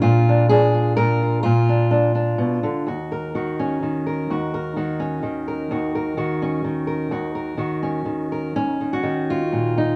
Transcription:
Already playing: D4 F4
0.02 A#2 F4
0.29 D4
0.49 D4 G#4
0.74 F4
0.97 A#2 A#4
1.22 F4
1.43 A#2 F4
1.69 D4
1.91 D4
2.15 D4
2.38 B2
2.63 D3
2.87 D#2 F#4
3.12 A#4
3.35 D#3 F#4
3.59 C#4
3.83 D#3
4.06 A#4
4.30 D#2 F#4
4.54 A#4
4.76 D#3 F#4
5.00 C#4
5.23 D#3
5.48 A#4
5.71 D#2 F#4
5.95 A#4
6.17 D#3 F#4
6.42 C#4
6.64 D#3
6.87 A#4
7.11 D#2 F#4
7.35 A#4
7.57 D#3 F#4
7.83 C#4
8.05 D#3
8.32 A#4
8.56 D#2 C#4
8.81 D#3
8.93 F#4
9.03 D#3
9.30 F4
9.52 A#2
9.78 D#4

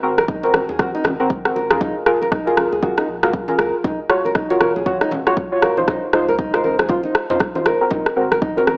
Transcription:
0.03 G#1 C4 F#4 A#4
0.18 A#4, cross-stick, muted conga
0.28 D#4, kick
0.43 C4 F#4 A#4, muted conga
0.54 G#1 A#4, cross-stick, high conga
0.69 D#2 G#4, muted conga
0.79 C4 F#4 A#4, kick, cross-stick, high conga
0.95 D#4, muted conga
1.04 G#1, cross-stick, high conga, low conga
1.20 C4 F#4 A#4
1.30 kick, muted conga
1.45 C4 F#4 A#4, cross-stick
1.56 G#1 A#4, muted conga
1.70 D#2 F4 G#4 A#4, cross-stick, high conga
1.81 D#4, kick, muted conga, low conga
2.06 F#1 F4 G#4 A#4, cross-stick
2.22 A#4, muted conga
2.32 D#4, kick, cross-stick
2.47 F4 G#4 A#4, muted conga
2.57 F#1 A#4, cross-stick, high conga
2.72 C#2 G#4, muted conga
2.82 F4 F#4 G#4 A#4, kick, high conga
2.97 D#4, cross-stick, muted conga
3.08 A#1
3.23 C#2 F4 F#4 G#4 A#4, cross-stick, low conga
3.33 kick, muted conga
3.48 F4 G#4 A#4, high conga
3.59 C#2 A#4, cross-stick, muted conga, high conga
3.84 D#4, kick, muted conga, low conga
4.10 D#1 F4 F#4 C#5, cross-stick
4.25 A#4, muted conga
4.35 D#4, kick, cross-stick
4.50 F4 F#4 A#4 C#5, muted conga
4.61 D#1 A#4, cross-stick, high conga
4.76 A#1 G#4, muted conga
4.86 F4 F#4 C#5, kick, high conga
5.01 D#4, cross-stick, muted conga
5.11 D#1, high conga, low conga
5.27 F4 F#4 C#5, cross-stick
5.37 kick, muted conga
5.52 F4 F#4 C#5
5.62 D#1 A#4, cross-stick, muted conga
5.77 A#1 D#4 F4 C5, high conga
5.88 D#4, kick, cross-stick, muted conga, low conga
6.13 C#2 D#4 F4 C5, cross-stick
6.28 A#4, muted conga
6.39 D#4, kick
6.54 D#4 F4 A#4 C5, cross-stick, muted conga
6.64 C#2 A#4, high conga
6.79 G#1 G#4, cross-stick, muted conga
6.89 D#4 F4 C5, kick, high conga
7.03 D#4, muted conga
7.15 cross-stick
7.30 F2 D#4 F4 C5, low conga
7.40 kick, cross-stick, muted conga
7.55 D#4 F4 C5, high conga
7.66 G#1 A#4, cross-stick, muted conga
7.81 C4 F#4 A#4
7.91 D#4, kick, muted conga, low conga
8.06 cross-stick
8.16 G#1 C4 F#4 A#4
8.31 A#4, cross-stick, muted conga
8.42 D#4, kick
8.57 C4 F#4 A#4, muted conga
8.67 G#1 A#4, cross-stick, high conga

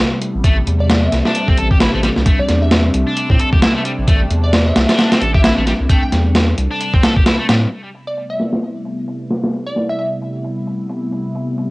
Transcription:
Already playing: C3 G3 A3 B3 E4
0.22 closed hi-hat
0.35 A1
0.44 A1 A3 C4 D4, kick, closed hi-hat
0.67 E2, closed hi-hat
0.80 D5
0.90 snare, closed hi-hat
1.03 E5
1.12 C2, snare, closed hi-hat
1.25 D4, snare
1.35 closed hi-hat
1.48 C4, kick
1.58 A1 A4, closed hi-hat
1.71 G4, kick
1.80 E4, snare, closed hi-hat
1.94 A1 A3
2.03 G3, snare, closed hi-hat
2.16 C2, snare
2.26 A3, kick, closed hi-hat
2.39 D5
2.49 E2, snare, closed hi-hat
2.62 E5
2.71 E5, snare, closed hi-hat
2.94 C2, closed hi-hat
3.07 D4
3.17 closed hi-hat
3.30 A2 C4, kick
3.39 A4, closed hi-hat
3.53 G1 G4, kick
3.62 E4, snare, closed hi-hat
3.75 A3
3.85 G3, closed hi-hat
3.98 A1
4.08 A1 A3, kick, closed hi-hat
4.30 E2, closed hi-hat
4.44 D5
4.53 snare, closed hi-hat
4.67 E5
4.76 C2, snare, closed hi-hat
4.89 D4, snare, closed hi-hat
4.99 snare, closed hi-hat
5.12 C4, snare, closed hi-hat
5.21 A1 A4, closed hi-hat
5.34 G4 E5, kick
5.44 E4, snare, closed hi-hat
5.57 A1 A3
5.67 G3, snare, closed hi-hat
5.80 C2
5.89 A3 G5, kick, closed hi-hat
6.03 G5
6.12 E2, snare, closed hi-hat
6.35 snare, closed hi-hat
6.58 C2, closed hi-hat
6.71 D4
6.81 closed hi-hat
6.94 C4, kick
7.03 A4, snare, closed hi-hat
7.16 G4, kick
7.26 E4, snare, closed hi-hat
7.39 A3
7.49 A2 G3, snare, closed hi-hat
7.71 C3 G3 A3 B3 E4, closed hi-hat
7.94 closed hi-hat
8.07 D5
8.17 closed hi-hat
8.30 E5
8.40 snare, closed hi-hat
8.53 snare
8.62 closed hi-hat
8.85 closed hi-hat
9.08 closed hi-hat
9.31 snare, closed hi-hat
9.44 snare
9.53 closed hi-hat
9.67 D5
9.76 snare, closed hi-hat
9.90 E5
9.99 E5, closed hi-hat
10.22 closed hi-hat
10.44 closed hi-hat
10.67 closed hi-hat
10.90 closed hi-hat
11.12 closed hi-hat
11.35 closed hi-hat
11.58 closed hi-hat

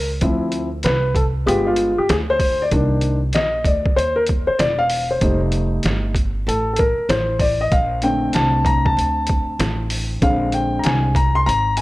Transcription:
Already playing: C#2
0.21 D2 F3 C4 E4, kick, closed hi-hat
0.52 closed hi-hat
0.83 C2 B4, snare, closed hi-hat
1.15 A4, kick, closed hi-hat
1.46 G1 G#3 B3 F4 G4, closed hi-hat
1.67 F4
1.76 closed hi-hat
1.98 G4, muted upright bass stroke
2.09 D2 G#4, snare, closed hi-hat
2.30 C5
2.40 kick, open hi-hat
2.62 D5
2.71 C2 D#3 A#3 D4, kick, closed hi-hat
3.01 closed hi-hat
3.33 A#1 D#5, snare, closed hi-hat
3.65 D2 D5, kick, closed hi-hat
3.86 kick
3.96 D#2 C5, closed hi-hat
4.16 A#4
4.27 kick, closed hi-hat
4.47 C5, muted upright bass stroke
4.59 E1 D5, snare, closed hi-hat
4.79 F5
4.90 open hi-hat
5.11 C5
5.21 F1 G3 A3 D#4, kick, closed hi-hat
5.52 closed hi-hat
5.83 G1, snare, closed hi-hat
6.15 kick, closed hi-hat
6.47 A1 A4, closed hi-hat
6.73 A4, closed hi-hat
6.79 A#4, kick
6.98 muted upright bass stroke
7.09 A1 C5, snare, closed hi-hat
7.39 D5, kick, open hi-hat
7.61 D#5
7.72 A#1 F5, kick, closed hi-hat
8.02 D3 A3 C4 G5, closed hi-hat
8.33 C2 A5, snare, closed hi-hat
8.65 A#5, kick, closed hi-hat
8.85 A5, kick
8.97 D2, closed hi-hat
9.27 kick, closed hi-hat
9.59 A1, snare, closed hi-hat
9.90 open hi-hat
10.22 A#1 D3 G#3 C4 F5, kick, closed hi-hat
10.52 G5, closed hi-hat
10.79 A#5
10.84 C2 G#5, snare, closed hi-hat
11.15 A#5, kick, closed hi-hat
11.35 C6
11.46 G#1 A#5, closed hi-hat
11.77 G#5, closed hi-hat

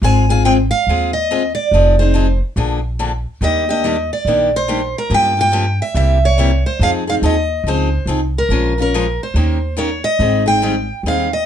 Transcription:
0.02 G#1 G#3 C4 F4 G#4 G#5
0.29 C4 F4 G#4 G#5
0.45 G#3 C4 F4 G#4 G5
0.71 F5
0.87 D#2 G#3 C4 F4 G#4
1.13 D#5
1.31 G#3 C4 F4 G#4
1.55 D5
1.71 F1 F3 C4 D#4 G#4
1.99 C4 D#4 G#4 C5
2.14 F3 C4 D#4 G#4
2.56 A#1 D3 F3 A#3 D4 G#4
2.99 D3 F3 A#3 D4 G#4
3.41 D#2 D#3 G3 A#3 D4 G4 D#5
3.69 A#3 D4 G4 D#5
3.84 D#3 G3 A#3 D4 G4
4.13 D5
4.25 A#1 D#3 G3 A#3 D4 G4
4.56 C5
4.68 D#3 G3 A#3 D4 G4
4.98 A#4
5.10 G2 C#3 F3 A#3 F4 G4
5.14 G5
5.37 A#3 F4 G4 G5
5.52 C#3 F3 A#3 F4 G4
5.82 E5
5.94 C2 C3 G3 A#3 E4 G4 E5
6.25 C#5
6.38 C3 G3 A#3 E4 G4
6.66 C5
6.79 F2 F3 C4 D#4 G#4 F5
7.07 C4 D#4 G#4 F5
7.22 D#2 F3 C4 D#4 G#4 D#5
7.64 C#2 F3 C4
7.68 D#4 G#4 C5
8.06 C2 F3 C4 D#4 G#4
8.38 A#4
8.49 A#1 F3 G#3 C#4 F4 A#4
8.78 C#4 F4 A#4
8.94 F3 G#3 C#4 F4 A#4
9.23 C5
9.34 D#2 D#3 A#3 C#4 G4 A#4
9.77 D#3 A#3 C#4 G4 A#4 C#5
10.04 D#5
10.19 G#1 D#3 G3 C4 D#4 G#4
10.46 C4 D#4 G#4 G5
10.62 D#3 G3 C4 D#4 G#4
11.03 D#2 D#3 G3 C4 D#4 G#4
11.08 F5
11.33 D#5

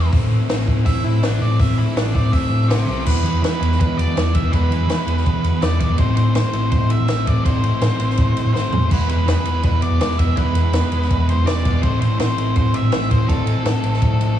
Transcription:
Already playing: E2 E3 G#3 B3 E4
0.12 A1 A2 E3 A3 C4 E4, kick, open hi-hat
0.31 A2
0.48 A1 A2 E3 A3 C4 E4, snare, open hi-hat
0.59 snare
0.67 A2 E3 A3 C4 E4, kick
0.85 A1 A2 E3 A3 C4 E4 E5, kick, open hi-hat
1.03 A2 E4
1.21 A1 A2 E3 A3 C4 D4 E4, snare, open hi-hat
1.40 A2 E3 A3 C4 E4 D5
1.59 A1 A2 E3 A3 C4 E4 E5, kick, open hi-hat
1.76 A2 E4
1.95 A1 A2 E3 A3 C4 D4 E4, snare, open hi-hat
2.13 A2 E3 A3 C4 E4 D5, kick
2.32 A1 A2 E3 A3 C4 E4 E5, kick, open hi-hat
2.49 A2
2.68 A1 A2 E3 A3 C4 E4 C5, snare, open hi-hat
2.87 B1 A2 E3 A3 C4 E4
3.04 E2 E3 G#3 B3 E4 B4, kick, crash
3.23 E3 G#3 B3 E4, ride
3.32 E2
3.41 E3 G#3 B3 E4 B4, snare, ride
3.59 E2 G#3 B3 E4, ride
3.72 snare
3.80 E3 B4, kick, ride
3.97 E2 D5, ride
4.06 E3
4.15 E2 E3 G#3 B3 E4, snare, ride
4.34 E3 G#3 B3 E4 E5, kick, ride
4.42 E2
4.52 E3 G#3 B3 E4 B4, kick, ride
4.69 E3 G#3 B3 E4, ride
4.78 E2
4.86 E3 G#3 B3 E4, snare, ride
5.06 E2 G#3 B3 E4, ride
5.18 snare
5.26 E3, kick, ride
5.43 E2, ride
5.51 E3
5.61 E2 E3 G#3 B3 E4 D5, snare, ride
5.80 E3 G#3 B3 E4 D5, kick, ride
5.88 E2
5.98 A1 A2 E3 A3 C4 E4 C5, kick, ride
6.16 A2 A3 C4 E4 C5, ride
6.26 A1
6.35 A2 E3 A3 C4 E4 C5, snare, ride
6.53 A1 A3 C4 E4, ride
6.71 A2 C5, kick, ride
6.90 A1 E5, ride
7.00 A2
7.08 A1 A2 E3 A3 C4 E4, snare, ride
7.26 A2 A3 C4 E4 D5, kick, ride
7.35 A1
7.44 A1 A2 E3 A3 C4 E4 C5, kick, ride
7.62 A2 A3 C4 E4, ride
7.72 A1
7.81 A2 E3 A3 C4 E4, snare, ride
7.99 A1 A3 C4 E4, ride
8.10 snare
8.17 A2, kick, ride
8.35 A1, ride
8.45 A2
8.52 A2 E3 A3 C4 E4 C5, snare
8.71 E1 A3 C4 E4, floor tom
8.90 E1 E3 G#3 B3 E4 B4, kick, splash, crash
9.07 E2 G#3 B3 E4 B4, ride
9.17 E1
9.26 E2 E3 G#3 B3 E4 B4, snare, ride
9.44 E1 G#3 B3 E4, ride
9.63 E2 B4, kick, ride
9.80 E1 D5, ride
9.90 E2
9.99 E1 E3 G#3 B3 E4, snare, ride
10.11 snare
10.17 E2 G#3 B3 E4 E5, kick, ride
10.26 E1
10.35 E1 E3 G#3 B3 E4 B4, kick, ride
10.53 E2 G#3 B3 E4, ride
10.62 E1
10.71 E2 E3 G#3 B3 E4, snare, ride
10.89 E1 G#3 B3 E4, ride
11.02 snare
11.10 E2, kick, ride
11.27 E1 C5, ride
11.37 E2
11.44 E1 E3 G#3 B3 E4 D5, snare, ride
11.57 snare
11.63 E2 G#3 B3 E4, kick, ride
11.72 E1
11.82 A1 A2 E3 A3 C4 E4 C5, kick, ride
12.00 A2 A3 C4 E4 C5, ride
12.09 A1
12.18 A2 E3 A3 C4 E4 C5, snare, ride
12.36 A1 A3 C4 E4, ride
12.56 A2 C5, kick, ride
12.73 A1 E5, ride
12.81 A2
12.91 A1 A2 E3 A3 C4 E4, snare, ride
13.02 snare
13.09 A2 A3 C4 E4 C5, kick, ride
13.19 A1
13.27 A1 A2 E3 A3 C4 E4 A4, kick, ride
13.45 A2 A3 C4 E4, ride
13.56 A1
13.63 A2 E3 A3 C4 E4, snare, ride
13.83 A1 A3 C4 E4, ride
13.94 snare
14.02 A2, kick, ride
14.20 A1, ride

